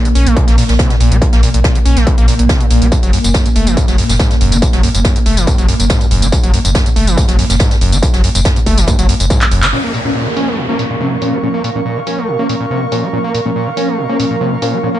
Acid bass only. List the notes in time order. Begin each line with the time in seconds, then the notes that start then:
0.05 F3
0.15 C#4
0.26 A3
0.37 A#2
0.48 A#3
0.58 A#2
0.69 A#2
0.79 C3
0.90 A#2
1.00 A#2
1.11 A3
1.22 A#2
1.33 A#3
1.43 A#2
1.54 A#2
1.64 A#2
1.75 F3
1.85 C#4
1.97 A3
2.07 A#2
2.18 A#3
2.28 A#2
2.39 A#2
2.49 C3
2.60 A#2
2.71 A#2
2.82 A3
2.92 F#2
3.03 F#3
3.13 F#2
3.24 F#2
3.34 F#2
3.46 C#3
3.56 A3
3.67 E3
3.77 F#2
3.88 F#3
3.98 F#2
4.09 F#2
4.19 G#2
4.31 F#2
4.41 F#2
4.52 E3
4.62 F#2
4.73 F#3
4.83 F#2
4.95 F#2
5.05 F#2
5.16 C#3
5.26 A3
5.37 E3
5.47 F#2
5.58 F#3
5.68 F#2
5.80 F#2
5.90 G#2
6.01 F#2
6.11 F#2
6.22 E3
6.32 F#2
6.43 F#3
6.54 F#2
6.65 F#2
6.75 F#2
6.86 C#3
6.96 A3
7.07 E3
7.17 F#2
7.29 F#3
7.39 F#2
7.50 F#2
7.60 G#2
7.71 F#2
7.81 F#2
7.92 E3
8.02 F#2
8.14 F#3
8.24 F#2
8.35 F#2
8.45 F#2
8.56 C#3
8.66 A3
8.78 E3
8.88 F#2
8.99 F#3
9.09 F#2
9.20 F#2
9.30 G#2
9.41 F#2
9.51 F#2
9.63 E3
9.73 A#2
9.84 A#3
9.94 A#2
10.05 A#2
10.15 A#2
10.27 F3
10.37 C#4
10.48 A3
10.58 A#2
10.69 A#3
10.79 A#2
10.90 A#2
11.00 C3
11.12 A#2
11.22 A#2
11.33 A3
11.43 A#2
11.54 A#3
11.64 A#2
11.75 A#2
11.86 A#2
11.97 F3
12.07 C#4
12.18 A3
12.28 A#2
12.39 A#3
12.49 A#2
12.60 A#2
12.71 C3
12.82 A#2
12.92 A#2
13.03 A3
13.13 A#2
13.24 A#3
13.34 A#2
13.46 A#2
13.56 A#2
13.67 F3
13.77 C#4
13.88 A3
13.98 A#2
14.09 A#3
14.19 A#2
14.31 A#2
14.41 C3
14.52 A#2
14.62 A#2
14.73 A3
14.83 A#2
14.95 A#3